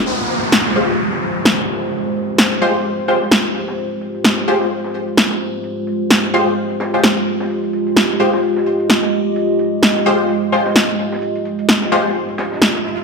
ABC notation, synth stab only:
X:1
M:4/4
L:1/16
Q:"Swing 16ths" 1/4=129
K:Fm
V:1 name="Synth stab"
z6 [A,FGc] z8 z | z6 [A,FGc] z3 [A,FGc] z4 z | z6 [A,FGc] z8 z | z6 [A,FGc] z4 [A,FGc] z4 |
z6 [A,FGc] z8 z | z6 [A,FGc] z3 [A,FGc] z4 z | z6 [A,FGc] z8 z |]